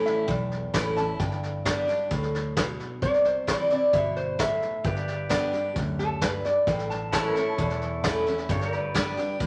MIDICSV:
0, 0, Header, 1, 6, 480
1, 0, Start_track
1, 0, Key_signature, 1, "major"
1, 0, Tempo, 455927
1, 1260, Time_signature, 4, 2, 24, 8
1, 9967, End_track
2, 0, Start_track
2, 0, Title_t, "Resonator guitar played with a steel bar"
2, 0, Program_c, 0, 25
2, 61, Note_on_c, 0, 76, 87
2, 285, Note_on_c, 0, 79, 70
2, 293, Note_off_c, 0, 76, 0
2, 758, Note_off_c, 0, 79, 0
2, 775, Note_on_c, 0, 83, 82
2, 1010, Note_off_c, 0, 83, 0
2, 1017, Note_on_c, 0, 81, 81
2, 1251, Note_off_c, 0, 81, 0
2, 1262, Note_on_c, 0, 79, 94
2, 2193, Note_off_c, 0, 79, 0
2, 3186, Note_on_c, 0, 74, 112
2, 3417, Note_off_c, 0, 74, 0
2, 3425, Note_on_c, 0, 72, 85
2, 3656, Note_off_c, 0, 72, 0
2, 3669, Note_on_c, 0, 74, 94
2, 3899, Note_off_c, 0, 74, 0
2, 3921, Note_on_c, 0, 74, 78
2, 4145, Note_off_c, 0, 74, 0
2, 4156, Note_on_c, 0, 76, 73
2, 4382, Note_off_c, 0, 76, 0
2, 4386, Note_on_c, 0, 72, 84
2, 4618, Note_off_c, 0, 72, 0
2, 4636, Note_on_c, 0, 76, 90
2, 6028, Note_off_c, 0, 76, 0
2, 6308, Note_on_c, 0, 69, 92
2, 6539, Note_off_c, 0, 69, 0
2, 6550, Note_on_c, 0, 71, 93
2, 6779, Note_off_c, 0, 71, 0
2, 6794, Note_on_c, 0, 74, 83
2, 7022, Note_off_c, 0, 74, 0
2, 7033, Note_on_c, 0, 79, 77
2, 7261, Note_off_c, 0, 79, 0
2, 7266, Note_on_c, 0, 81, 87
2, 7497, Note_off_c, 0, 81, 0
2, 7509, Note_on_c, 0, 81, 100
2, 8437, Note_off_c, 0, 81, 0
2, 9967, End_track
3, 0, Start_track
3, 0, Title_t, "Pedal steel guitar"
3, 0, Program_c, 1, 26
3, 5111, Note_on_c, 1, 67, 71
3, 5119, Note_on_c, 1, 71, 62
3, 5128, Note_on_c, 1, 74, 67
3, 7008, Note_off_c, 1, 67, 0
3, 7012, Note_off_c, 1, 71, 0
3, 7016, Note_off_c, 1, 74, 0
3, 7502, Note_on_c, 1, 64, 71
3, 7514, Note_on_c, 1, 71, 69
3, 7527, Note_on_c, 1, 73, 68
3, 7777, Note_off_c, 1, 71, 0
3, 7777, Note_on_c, 1, 69, 69
3, 8927, Note_off_c, 1, 64, 0
3, 8933, Note_off_c, 1, 69, 0
3, 8939, Note_off_c, 1, 73, 0
3, 8955, Note_on_c, 1, 67, 65
3, 8960, Note_on_c, 1, 69, 67
3, 8968, Note_on_c, 1, 73, 72
3, 9178, Note_off_c, 1, 73, 0
3, 9178, Note_on_c, 1, 74, 72
3, 9223, Note_off_c, 1, 69, 0
3, 9223, Note_on_c, 1, 71, 67
3, 9967, Note_off_c, 1, 67, 0
3, 9967, Note_off_c, 1, 71, 0
3, 9967, Note_off_c, 1, 74, 0
3, 9967, End_track
4, 0, Start_track
4, 0, Title_t, "Steel-string acoustic guitar"
4, 0, Program_c, 2, 25
4, 0, Note_on_c, 2, 45, 77
4, 0, Note_on_c, 2, 52, 74
4, 0, Note_on_c, 2, 57, 85
4, 0, Note_on_c, 2, 61, 86
4, 0, Note_on_c, 2, 64, 92
4, 250, Note_off_c, 2, 45, 0
4, 273, Note_off_c, 2, 52, 0
4, 276, Note_off_c, 2, 57, 0
4, 277, Note_off_c, 2, 61, 0
4, 281, Note_off_c, 2, 64, 0
4, 292, Note_on_c, 2, 40, 96
4, 775, Note_on_c, 2, 52, 76
4, 781, Note_on_c, 2, 57, 90
4, 788, Note_on_c, 2, 61, 93
4, 790, Note_on_c, 2, 64, 95
4, 1002, Note_off_c, 2, 64, 0
4, 1008, Note_off_c, 2, 52, 0
4, 1011, Note_off_c, 2, 57, 0
4, 1014, Note_on_c, 2, 64, 58
4, 1015, Note_off_c, 2, 61, 0
4, 1034, Note_on_c, 2, 61, 50
4, 1209, Note_off_c, 2, 40, 0
4, 1248, Note_off_c, 2, 64, 0
4, 1258, Note_off_c, 2, 61, 0
4, 1264, Note_on_c, 2, 43, 85
4, 1743, Note_on_c, 2, 55, 89
4, 1748, Note_on_c, 2, 59, 85
4, 1754, Note_on_c, 2, 62, 91
4, 1759, Note_on_c, 2, 67, 83
4, 1964, Note_off_c, 2, 67, 0
4, 1973, Note_off_c, 2, 55, 0
4, 1975, Note_off_c, 2, 59, 0
4, 1976, Note_on_c, 2, 67, 57
4, 1978, Note_off_c, 2, 62, 0
4, 1992, Note_on_c, 2, 62, 46
4, 2175, Note_off_c, 2, 43, 0
4, 2209, Note_off_c, 2, 67, 0
4, 2217, Note_off_c, 2, 62, 0
4, 2218, Note_on_c, 2, 45, 89
4, 2676, Note_off_c, 2, 45, 0
4, 2702, Note_on_c, 2, 47, 83
4, 3159, Note_off_c, 2, 47, 0
4, 3182, Note_on_c, 2, 48, 79
4, 3656, Note_on_c, 2, 52, 76
4, 3664, Note_on_c, 2, 55, 86
4, 3669, Note_on_c, 2, 60, 90
4, 3672, Note_on_c, 2, 64, 85
4, 3888, Note_off_c, 2, 64, 0
4, 3890, Note_off_c, 2, 52, 0
4, 3894, Note_off_c, 2, 55, 0
4, 3896, Note_off_c, 2, 60, 0
4, 3901, Note_on_c, 2, 64, 59
4, 3914, Note_on_c, 2, 60, 46
4, 4095, Note_off_c, 2, 48, 0
4, 4132, Note_off_c, 2, 64, 0
4, 4139, Note_off_c, 2, 60, 0
4, 4143, Note_on_c, 2, 47, 89
4, 4599, Note_off_c, 2, 47, 0
4, 4620, Note_on_c, 2, 45, 84
4, 5078, Note_off_c, 2, 45, 0
4, 5099, Note_on_c, 2, 43, 82
4, 5573, Note_on_c, 2, 55, 81
4, 5580, Note_on_c, 2, 59, 78
4, 5584, Note_on_c, 2, 62, 90
4, 5590, Note_on_c, 2, 67, 83
4, 5808, Note_off_c, 2, 67, 0
4, 5809, Note_off_c, 2, 55, 0
4, 5812, Note_off_c, 2, 59, 0
4, 5814, Note_off_c, 2, 62, 0
4, 5820, Note_on_c, 2, 67, 61
4, 5836, Note_on_c, 2, 62, 46
4, 6013, Note_off_c, 2, 43, 0
4, 6052, Note_off_c, 2, 67, 0
4, 6060, Note_off_c, 2, 62, 0
4, 6064, Note_on_c, 2, 42, 88
4, 6520, Note_off_c, 2, 42, 0
4, 6547, Note_on_c, 2, 43, 88
4, 7001, Note_off_c, 2, 43, 0
4, 7026, Note_on_c, 2, 45, 88
4, 7499, Note_on_c, 2, 52, 76
4, 7507, Note_on_c, 2, 57, 87
4, 7510, Note_on_c, 2, 61, 82
4, 7517, Note_on_c, 2, 64, 88
4, 7731, Note_off_c, 2, 52, 0
4, 7731, Note_off_c, 2, 64, 0
4, 7735, Note_off_c, 2, 57, 0
4, 7737, Note_off_c, 2, 61, 0
4, 7743, Note_on_c, 2, 64, 54
4, 7758, Note_on_c, 2, 61, 49
4, 7936, Note_off_c, 2, 45, 0
4, 7973, Note_off_c, 2, 64, 0
4, 7981, Note_off_c, 2, 61, 0
4, 7985, Note_on_c, 2, 40, 99
4, 8460, Note_on_c, 2, 52, 86
4, 8465, Note_on_c, 2, 57, 88
4, 8473, Note_on_c, 2, 61, 99
4, 8478, Note_on_c, 2, 64, 96
4, 8690, Note_off_c, 2, 64, 0
4, 8691, Note_off_c, 2, 52, 0
4, 8694, Note_off_c, 2, 57, 0
4, 8698, Note_off_c, 2, 61, 0
4, 8703, Note_on_c, 2, 64, 58
4, 8719, Note_on_c, 2, 61, 52
4, 8895, Note_off_c, 2, 40, 0
4, 8933, Note_off_c, 2, 64, 0
4, 8941, Note_off_c, 2, 61, 0
4, 8943, Note_on_c, 2, 43, 93
4, 9416, Note_on_c, 2, 55, 87
4, 9425, Note_on_c, 2, 59, 89
4, 9431, Note_on_c, 2, 62, 81
4, 9435, Note_on_c, 2, 67, 89
4, 9643, Note_off_c, 2, 67, 0
4, 9648, Note_off_c, 2, 55, 0
4, 9653, Note_off_c, 2, 59, 0
4, 9656, Note_off_c, 2, 62, 0
4, 9656, Note_on_c, 2, 67, 63
4, 9676, Note_on_c, 2, 62, 46
4, 9853, Note_off_c, 2, 43, 0
4, 9888, Note_off_c, 2, 67, 0
4, 9898, Note_off_c, 2, 62, 0
4, 9898, Note_on_c, 2, 45, 93
4, 9967, Note_off_c, 2, 45, 0
4, 9967, End_track
5, 0, Start_track
5, 0, Title_t, "Fingered electric bass"
5, 0, Program_c, 3, 33
5, 296, Note_on_c, 3, 35, 69
5, 706, Note_off_c, 3, 35, 0
5, 778, Note_on_c, 3, 33, 86
5, 1187, Note_off_c, 3, 33, 0
5, 1259, Note_on_c, 3, 31, 83
5, 1963, Note_off_c, 3, 31, 0
5, 2222, Note_on_c, 3, 38, 76
5, 2925, Note_off_c, 3, 38, 0
5, 3181, Note_on_c, 3, 36, 87
5, 3885, Note_off_c, 3, 36, 0
5, 4138, Note_on_c, 3, 31, 80
5, 4843, Note_off_c, 3, 31, 0
5, 5100, Note_on_c, 3, 31, 87
5, 5805, Note_off_c, 3, 31, 0
5, 6063, Note_on_c, 3, 38, 72
5, 6766, Note_off_c, 3, 38, 0
5, 7022, Note_on_c, 3, 33, 90
5, 7725, Note_off_c, 3, 33, 0
5, 7983, Note_on_c, 3, 28, 73
5, 8685, Note_off_c, 3, 28, 0
5, 8940, Note_on_c, 3, 31, 86
5, 9643, Note_off_c, 3, 31, 0
5, 9901, Note_on_c, 3, 38, 78
5, 9967, Note_off_c, 3, 38, 0
5, 9967, End_track
6, 0, Start_track
6, 0, Title_t, "Drums"
6, 62, Note_on_c, 9, 38, 32
6, 167, Note_off_c, 9, 38, 0
6, 298, Note_on_c, 9, 36, 100
6, 299, Note_on_c, 9, 38, 33
6, 403, Note_off_c, 9, 36, 0
6, 404, Note_off_c, 9, 38, 0
6, 541, Note_on_c, 9, 38, 31
6, 647, Note_off_c, 9, 38, 0
6, 779, Note_on_c, 9, 36, 83
6, 779, Note_on_c, 9, 38, 104
6, 779, Note_on_c, 9, 44, 84
6, 884, Note_off_c, 9, 36, 0
6, 884, Note_off_c, 9, 38, 0
6, 884, Note_off_c, 9, 44, 0
6, 1019, Note_on_c, 9, 38, 34
6, 1125, Note_off_c, 9, 38, 0
6, 1259, Note_on_c, 9, 38, 34
6, 1260, Note_on_c, 9, 36, 110
6, 1364, Note_off_c, 9, 38, 0
6, 1366, Note_off_c, 9, 36, 0
6, 1383, Note_on_c, 9, 38, 36
6, 1488, Note_off_c, 9, 38, 0
6, 1507, Note_on_c, 9, 38, 30
6, 1612, Note_off_c, 9, 38, 0
6, 1742, Note_on_c, 9, 36, 81
6, 1744, Note_on_c, 9, 38, 97
6, 1744, Note_on_c, 9, 44, 78
6, 1847, Note_off_c, 9, 36, 0
6, 1849, Note_off_c, 9, 38, 0
6, 1849, Note_off_c, 9, 44, 0
6, 1986, Note_on_c, 9, 38, 32
6, 2091, Note_off_c, 9, 38, 0
6, 2223, Note_on_c, 9, 36, 99
6, 2224, Note_on_c, 9, 38, 31
6, 2328, Note_off_c, 9, 36, 0
6, 2330, Note_off_c, 9, 38, 0
6, 2345, Note_on_c, 9, 38, 31
6, 2450, Note_off_c, 9, 38, 0
6, 2468, Note_on_c, 9, 38, 34
6, 2574, Note_off_c, 9, 38, 0
6, 2702, Note_on_c, 9, 36, 82
6, 2703, Note_on_c, 9, 38, 101
6, 2703, Note_on_c, 9, 44, 83
6, 2808, Note_off_c, 9, 36, 0
6, 2808, Note_off_c, 9, 38, 0
6, 2808, Note_off_c, 9, 44, 0
6, 2946, Note_on_c, 9, 38, 35
6, 3051, Note_off_c, 9, 38, 0
6, 3180, Note_on_c, 9, 36, 100
6, 3180, Note_on_c, 9, 38, 36
6, 3285, Note_off_c, 9, 38, 0
6, 3286, Note_off_c, 9, 36, 0
6, 3302, Note_on_c, 9, 38, 34
6, 3407, Note_off_c, 9, 38, 0
6, 3416, Note_on_c, 9, 38, 29
6, 3521, Note_off_c, 9, 38, 0
6, 3660, Note_on_c, 9, 36, 85
6, 3661, Note_on_c, 9, 38, 108
6, 3661, Note_on_c, 9, 44, 83
6, 3765, Note_off_c, 9, 36, 0
6, 3767, Note_off_c, 9, 38, 0
6, 3767, Note_off_c, 9, 44, 0
6, 3901, Note_on_c, 9, 38, 34
6, 4006, Note_off_c, 9, 38, 0
6, 4141, Note_on_c, 9, 36, 105
6, 4143, Note_on_c, 9, 38, 31
6, 4246, Note_off_c, 9, 36, 0
6, 4248, Note_off_c, 9, 38, 0
6, 4383, Note_on_c, 9, 38, 32
6, 4488, Note_off_c, 9, 38, 0
6, 4622, Note_on_c, 9, 36, 89
6, 4624, Note_on_c, 9, 38, 108
6, 4624, Note_on_c, 9, 44, 85
6, 4728, Note_off_c, 9, 36, 0
6, 4729, Note_off_c, 9, 38, 0
6, 4729, Note_off_c, 9, 44, 0
6, 4866, Note_on_c, 9, 38, 34
6, 4971, Note_off_c, 9, 38, 0
6, 5102, Note_on_c, 9, 36, 111
6, 5102, Note_on_c, 9, 38, 33
6, 5207, Note_off_c, 9, 36, 0
6, 5207, Note_off_c, 9, 38, 0
6, 5224, Note_on_c, 9, 38, 32
6, 5329, Note_off_c, 9, 38, 0
6, 5343, Note_on_c, 9, 38, 33
6, 5448, Note_off_c, 9, 38, 0
6, 5582, Note_on_c, 9, 36, 78
6, 5582, Note_on_c, 9, 38, 103
6, 5582, Note_on_c, 9, 44, 85
6, 5687, Note_off_c, 9, 36, 0
6, 5687, Note_off_c, 9, 38, 0
6, 5687, Note_off_c, 9, 44, 0
6, 5824, Note_on_c, 9, 38, 33
6, 5930, Note_off_c, 9, 38, 0
6, 6063, Note_on_c, 9, 36, 101
6, 6066, Note_on_c, 9, 38, 32
6, 6168, Note_off_c, 9, 36, 0
6, 6171, Note_off_c, 9, 38, 0
6, 6307, Note_on_c, 9, 38, 32
6, 6412, Note_off_c, 9, 38, 0
6, 6543, Note_on_c, 9, 36, 83
6, 6543, Note_on_c, 9, 38, 102
6, 6543, Note_on_c, 9, 44, 84
6, 6648, Note_off_c, 9, 38, 0
6, 6648, Note_off_c, 9, 44, 0
6, 6649, Note_off_c, 9, 36, 0
6, 6784, Note_on_c, 9, 38, 35
6, 6890, Note_off_c, 9, 38, 0
6, 7021, Note_on_c, 9, 38, 34
6, 7023, Note_on_c, 9, 36, 111
6, 7126, Note_off_c, 9, 38, 0
6, 7128, Note_off_c, 9, 36, 0
6, 7146, Note_on_c, 9, 38, 35
6, 7251, Note_off_c, 9, 38, 0
6, 7267, Note_on_c, 9, 38, 31
6, 7373, Note_off_c, 9, 38, 0
6, 7503, Note_on_c, 9, 36, 81
6, 7504, Note_on_c, 9, 38, 109
6, 7504, Note_on_c, 9, 44, 87
6, 7608, Note_off_c, 9, 36, 0
6, 7609, Note_off_c, 9, 38, 0
6, 7609, Note_off_c, 9, 44, 0
6, 7745, Note_on_c, 9, 38, 35
6, 7850, Note_off_c, 9, 38, 0
6, 7983, Note_on_c, 9, 36, 96
6, 7984, Note_on_c, 9, 38, 36
6, 8089, Note_off_c, 9, 36, 0
6, 8089, Note_off_c, 9, 38, 0
6, 8102, Note_on_c, 9, 38, 29
6, 8208, Note_off_c, 9, 38, 0
6, 8225, Note_on_c, 9, 38, 31
6, 8331, Note_off_c, 9, 38, 0
6, 8463, Note_on_c, 9, 36, 85
6, 8463, Note_on_c, 9, 38, 108
6, 8463, Note_on_c, 9, 44, 84
6, 8568, Note_off_c, 9, 36, 0
6, 8568, Note_off_c, 9, 38, 0
6, 8568, Note_off_c, 9, 44, 0
6, 8706, Note_on_c, 9, 38, 36
6, 8811, Note_off_c, 9, 38, 0
6, 8819, Note_on_c, 9, 38, 29
6, 8924, Note_off_c, 9, 38, 0
6, 8941, Note_on_c, 9, 36, 104
6, 8941, Note_on_c, 9, 38, 34
6, 9046, Note_off_c, 9, 36, 0
6, 9046, Note_off_c, 9, 38, 0
6, 9063, Note_on_c, 9, 38, 34
6, 9168, Note_off_c, 9, 38, 0
6, 9184, Note_on_c, 9, 38, 30
6, 9289, Note_off_c, 9, 38, 0
6, 9421, Note_on_c, 9, 36, 83
6, 9422, Note_on_c, 9, 38, 109
6, 9422, Note_on_c, 9, 44, 78
6, 9526, Note_off_c, 9, 36, 0
6, 9527, Note_off_c, 9, 38, 0
6, 9527, Note_off_c, 9, 44, 0
6, 9662, Note_on_c, 9, 38, 33
6, 9768, Note_off_c, 9, 38, 0
6, 9900, Note_on_c, 9, 36, 100
6, 9900, Note_on_c, 9, 38, 32
6, 9967, Note_off_c, 9, 36, 0
6, 9967, Note_off_c, 9, 38, 0
6, 9967, End_track
0, 0, End_of_file